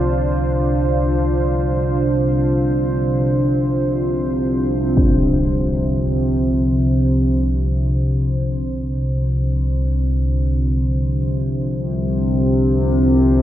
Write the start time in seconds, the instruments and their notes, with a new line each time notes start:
Already playing: synth drone C2 C3, ambient pad D4 F4 C5
4.97 synth drone C2, impact
5.01 synth drone C3